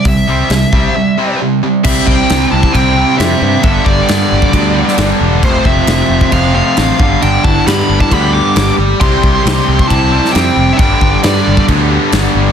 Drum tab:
CC |----------------|x---x---x---x---|x---x---x---x---|x---x---x---x---|
HH |o---o-----------|----------------|----------------|----------------|
SD |----o-----------|----o-------o---|----o------oo---|----o-------o---|
BD |o-----o---------|o-o----oo-------|o-o----oo-------|o-o----oo-----o-|

CC |x---x---x---x---|x---x---x---x---|x---x---x---x---|
HH |----------------|----------------|----------------|
SD |----o-------o---|----o------oo---|----o-------o---|
BD |--o----oo-------|o-o----oo-------|o-o----oo-------|